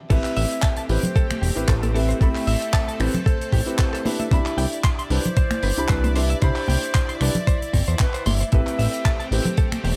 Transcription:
0.10 A1 A3 C4 E4 G4 A4 B4 E5, kick, closed hi-hat, crash
0.24 clap, closed hi-hat
0.36 A1 E5, open hi-hat
0.51 closed hi-hat
0.62 A5, kick, clap, closed hi-hat
0.77 A5, closed hi-hat
0.89 A1 C4 E4 G4 B4 C5, open hi-hat
1.03 closed hi-hat, low conga
1.16 A4, kick, closed hi-hat
1.30 finger snap, closed hi-hat, high conga
1.42 E1 G4, open hi-hat
1.55 A1 C4 E4 G4 B4, closed hi-hat
1.68 A1 A4 C5, kick, clap, closed hi-hat
1.83 A4, closed hi-hat, high conga
1.94 C4 E4 G4 A4 B4 E5, open hi-hat
2.09 C5, closed hi-hat
2.20 A1 C4 E4 G4 A4 E5 B5, kick, closed hi-hat
2.35 clap, open hi-hat
2.47 A1 E5, open hi-hat
2.62 closed hi-hat
2.73 A5, finger snap, kick, clap, closed hi-hat
2.88 A5, closed hi-hat
2.99 A1 C4 E4 G4 B4 C5, finger snap, open hi-hat
3.14 closed hi-hat, low conga
3.26 A4, kick, closed hi-hat
3.41 closed hi-hat
3.52 A1 G4, kick, open hi-hat
3.66 C4 E4 G4 B4, closed hi-hat
3.79 A4 C5, kick, clap, closed hi-hat
3.93 A4, clap, closed hi-hat
4.05 D4 E4 G4 B4 C5 D5 E5, open hi-hat, high conga
4.20 E5, closed hi-hat, high conga
4.31 C2 D4 E4 G4 C5 E5 B5, kick, closed hi-hat
4.46 clap, closed hi-hat
4.57 C2 G5, open hi-hat
4.73 closed hi-hat
4.84 C6, kick, clap, closed hi-hat
4.99 C6, closed hi-hat
5.10 C2 D4 E4 G4 B4 C5, open hi-hat
5.25 closed hi-hat, low conga
5.37 C5, kick, closed hi-hat
5.51 finger snap, closed hi-hat, high conga
5.63 G1 B4, open hi-hat
5.77 C2 D4 E4 G4 B5, closed hi-hat
5.88 C2 B4 C5, kick, clap, closed hi-hat
6.04 C5, closed hi-hat, high conga
6.15 D4 E4 G4 B4 C5 E5, open hi-hat
6.30 E5, closed hi-hat
6.41 C2 D4 E4 G4 C5 B5, kick, closed hi-hat
6.56 clap, open hi-hat
6.68 C2 G5, open hi-hat, high conga
6.83 closed hi-hat
6.95 C6, finger snap, kick, clap, closed hi-hat
7.09 C6, closed hi-hat
7.21 C2 D4 E4 G4 B4 D5, finger snap, open hi-hat
7.35 closed hi-hat, low conga
7.47 C5, kick, closed hi-hat
7.62 closed hi-hat
7.73 G1 C4, kick, open hi-hat
7.88 E2 C5, closed hi-hat
7.99 C4 B4, kick, clap, closed hi-hat
8.14 C5, clap, closed hi-hat
8.26 G1 E5 C6, open hi-hat, high conga
8.41 C5, closed hi-hat, high conga
8.52 A1 A3 C4 E4 G4 A4 B4 E5, kick, closed hi-hat
8.67 clap, closed hi-hat
8.79 A1 E5, open hi-hat
8.94 closed hi-hat
9.05 A5, kick, clap, closed hi-hat
9.20 A5, closed hi-hat
9.31 A1 C4 E4 G4 B4 C5, open hi-hat
9.45 closed hi-hat, low conga
9.57 A4, kick, closed hi-hat
9.72 finger snap, closed hi-hat, high conga
9.84 E1 G4, open hi-hat

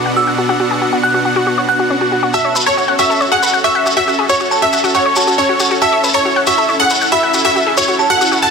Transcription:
Already playing: B2 B3 D4 F#4 F#5
0.06 F#5
0.16 F#4 E6
0.27 F#5
0.38 F#4, closed hi-hat
0.49 F#4
0.60 F#4, closed hi-hat
0.71 G#4
0.82 F#4
0.93 F#4
1.03 F#4 F#6
1.14 F#4
1.25 F#4
1.36 F#4
1.47 F#4
1.58 C#5
1.69 F#4 F#6, closed hi-hat
1.79 F#4, closed hi-hat
1.90 C#4
2.01 F#4
2.12 F#4, closed hi-hat
2.23 F#4
2.34 C#4 F#4 A4 E5 A5 E6, shekere
2.45 C#5
2.56 B4, shekere
2.66 A4 C#5 C#6, shekere
2.77 F#4, shekere
2.88 F#5
2.99 F#4 E5 C#6 E6, shekere
3.10 A4, shekere
3.21 C#5, shekere
3.32 G#4 F#5 F#6
3.43 B4, shekere
3.53 F#5
3.64 F#4 E5 C#6 E6, shekere
3.75 F#5
3.86 F#4, shekere
3.97 F#4 E5 E6, shekere
4.08 F#4, shekere
4.19 G#4
4.29 F#4 C#5 C#6, shekere
4.40 F#4, shekere
4.51 F#4 A5, closed hi-hat, shekere
4.62 F#4 E5 E6
4.73 F#4, shekere
4.84 F#4, shekere
4.94 F#4 C#5 C#6, shekere
5.06 C#5
5.16 F#4 A5, closed hi-hat, shekere
5.27 F#4, shekere
5.38 C#4 C#5 C#6, shekere
5.49 F#4
5.60 F#4, shekere
5.71 F#4, shekere
5.81 E4 F#4 E5 A5 E6, shekere
5.93 C#5
6.03 B4, closed hi-hat, shekere
6.13 A4 C#5 C#6, shekere
6.25 F#4, shekere
6.36 F#5
6.47 F#4 E5 C#6 E6, shekere
6.57 A4, shekere
6.69 C#5, shekere
6.80 G#4 F#5 F#6
6.90 B4, shekere
7.01 F#5, shekere
7.12 F#4 E5 B5 E6, shekere
7.23 F#5
7.34 F#4, closed hi-hat, shekere
7.44 F#4 E5 E6, shekere
7.56 F#4, shekere
7.67 G#4
7.77 F#4 C#5 C#6, shekere
7.88 F#4, closed hi-hat, shekere
7.99 F#4 A5, closed hi-hat, shekere
8.10 F#4 F#5 F#6
8.21 F#4, closed hi-hat, shekere
8.32 F#4, closed hi-hat, shekere
8.42 F#4 A5 A6, shekere

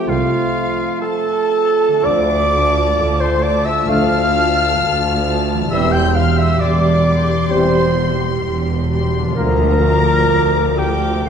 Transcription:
Already playing: F3 A3 C4 F4 G4 G5
0.08 C2 F4 F5
1.02 A3 F4 A4 A5
1.88 D3
1.92 A3
1.96 D4
2.01 D4 F4 D5
2.05 D2 F3 A3 D5 D6
2.53 A3 F4 A5
2.98 D2
3.20 C5 C6
3.43 A3 F4 D5 A5 D6
3.64 E5 E6
3.88 D2 F3 A3 D4 F4 F5 F6
4.35 A3 F4 A5
4.80 D2
5.26 A3 F4 A5
5.53 E3
5.58 G3 C4
5.66 E1 G4
5.70 E2 E3 G3 C4 G4 E5 C6 E6
5.92 G5 G6
6.15 G3 G4 F5 C6 F6
6.37 E5 E6
6.41 E5
6.59 E1 E2 D5 D6
6.64 D5
7.06 G3 G4 C6
7.49 E1 E2 C4 G4 C5 C6
7.54 E3 G3 C5
7.98 G3 G4 C6
8.44 E1 E2
8.90 G3 G4 C6
9.19 D3
9.23 F3
9.28 F4
9.32 D2 D4 F4 A#4
9.36 D2 F3 A#3 A#4 A#5
9.85 F3 A#4 D6
10.31 D2
10.78 F3 G4 A#4 G5 D6
11.11 C3
11.15 A3
11.20 C4
11.24 C5

